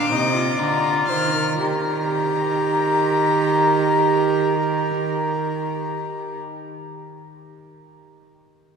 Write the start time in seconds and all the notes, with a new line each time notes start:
Already playing: A#2 D4 F5 D6
0.12 C3 D#4 D#5
0.36 F4
0.59 D3 D5 A#5
1.08 D#3 C5 F6
1.34 A#4
1.59 D#3 G4 A#4 A#5